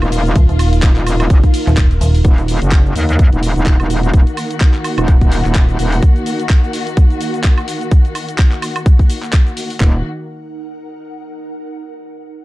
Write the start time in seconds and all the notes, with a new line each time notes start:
Already playing: D#3 A#3 D#4 F4 A#4 F5
0.02 D#1, closed hi-hat, cabasa, high woodblock
0.12 open hi-hat, ride, cabasa
0.25 closed hi-hat, cabasa
0.36 D#1, kick, closed hi-hat, cabasa
0.49 D#1, closed hi-hat, cabasa
0.59 open hi-hat, ride, cabasa, high woodblock
0.73 closed hi-hat, cabasa
0.82 D#1, kick, clap, closed hi-hat, cabasa
0.96 clap, closed hi-hat, cabasa
1.07 open hi-hat, ride, cabasa, high woodblock
1.20 closed hi-hat, cabasa, high woodblock
1.30 F#1, kick, closed hi-hat, cabasa
1.44 kick, closed hi-hat, cabasa
1.54 open hi-hat, ride, cabasa
1.67 D#1, clap, closed hi-hat, cabasa
1.77 kick, clap, closed hi-hat, cabasa
1.91 closed hi-hat, cabasa
2.01 D#1, open hi-hat, ride, cabasa
2.15 open hi-hat, cabasa
2.25 D#1 D#3 A#3 D#4 F#4, kick, closed hi-hat, cabasa
2.38 closed hi-hat, cabasa
2.48 open hi-hat, cabasa
2.62 F#1, closed hi-hat, cabasa
2.71 kick, clap, closed hi-hat, cabasa
2.86 A#4, cabasa
2.96 D#2 F#5, open hi-hat, cabasa
3.09 closed hi-hat, cabasa
3.19 kick, closed hi-hat, cabasa
3.33 D#1, closed hi-hat, cabasa
3.43 open hi-hat, cabasa
3.56 D#1, closed hi-hat, cabasa
3.66 kick, clap, closed hi-hat, cabasa
3.80 D#1, closed hi-hat, cabasa, high woodblock
3.90 open hi-hat, cabasa
4.03 closed hi-hat, cabasa
4.14 D#1, kick, closed hi-hat, cabasa
4.27 closed hi-hat, cabasa
4.37 open hi-hat, cabasa, high woodblock
4.51 closed hi-hat, cabasa
4.60 kick, clap, closed hi-hat, cabasa
4.74 clap, closed hi-hat, cabasa
4.84 open hi-hat, cabasa, high woodblock
4.98 D#1, closed hi-hat, cabasa, high woodblock
5.08 kick, closed hi-hat, cabasa
5.21 kick, closed hi-hat, cabasa
5.32 open hi-hat, cabasa
5.45 D#1, clap, cabasa
5.55 kick, clap, closed hi-hat, cabasa
5.69 closed hi-hat, cabasa
5.79 D#1, open hi-hat, cabasa
5.92 open hi-hat, cabasa
6.03 kick, closed hi-hat, cabasa
6.16 closed hi-hat, cabasa
6.26 open hi-hat, cabasa
6.40 closed hi-hat, cabasa
6.49 kick, clap, closed hi-hat, cabasa
6.64 cabasa
6.73 open hi-hat, cabasa
6.87 closed hi-hat, cabasa
6.97 kick, closed hi-hat, cabasa
7.10 closed hi-hat, cabasa
7.21 open hi-hat, cabasa
7.34 closed hi-hat, cabasa
7.44 kick, clap, closed hi-hat, cabasa
7.58 closed hi-hat, cabasa, high woodblock
7.68 open hi-hat, cabasa
7.81 closed hi-hat, cabasa
7.91 kick, closed hi-hat, cabasa
8.05 closed hi-hat, cabasa
8.15 open hi-hat, cabasa, high woodblock
8.29 closed hi-hat, cabasa
8.38 kick, clap, closed hi-hat, cabasa
8.52 clap, closed hi-hat, cabasa
8.62 open hi-hat, cabasa, high woodblock
8.76 closed hi-hat, cabasa, high woodblock
8.86 kick, closed hi-hat, cabasa
8.99 kick, closed hi-hat, cabasa
9.10 open hi-hat, cabasa
9.23 clap, cabasa
9.33 kick, clap, closed hi-hat, cabasa
9.47 closed hi-hat, cabasa
9.57 open hi-hat, cabasa
9.70 open hi-hat, cabasa
9.80 D#1 D#3 A#3 D#4 F#4, kick, clap
9.88 A#4
9.96 F#5